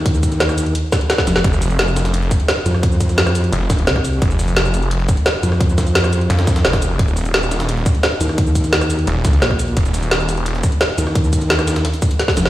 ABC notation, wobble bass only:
X:1
M:4/4
L:1/8
Q:1/4=173
K:Ebmix
V:1 name="Wobble bass" clef=bass
E,,4 z3 F,,, | z6 z F,,- | F,,4 z2 C,,2 | z6 z F,,- |
F,,4 z4 | z6 z E,,- | E,,4 z2 B,,,2 | z6 z E,,- |
E,,4 z3 F,,, |]